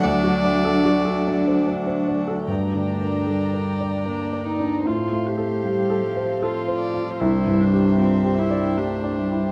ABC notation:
X:1
M:3/4
L:1/16
Q:1/4=76
K:Dphr
V:1 name="Violin"
d8 z4 | [K:Gm] d12 | c8 c2 d2 | c12 |]
V:2 name="String section"
[DA^f]12 | [K:Gm] [dgb]12 | [CAf]12 | [DG=e]12 |]
V:3 name="Grand piano"
[D,,A] ^F d A F A d c d c d A | [K:Gm] (3G,,2 D,2 B2 (3A2 B2 d2 (3B2 d2 D2 | (3A,,2 A,2 A2 (3G2 A2 c2 (3A2 c2 F2 | (3C,,2 G,,2 G2 (3F2 G2 d2 (3G2 d2 =E2 |]
V:4 name="Harp"
[D^FAd]2 d D2 F D F2 D2 F | [K:Gm] z12 | z12 | z12 |]
V:5 name="Viola"
D8- D3 z | [K:Gm] D8 D2 E2 | F2 G6 F4 | =E2 D2 C2 E2 D4 |]
V:6 name="Cello" clef=bass
^F,8- F,3 z | [K:Gm] A,4 G,4 B,4 | A,4 G,2 F,2 F,4 | G,8 A,2 G,2 |]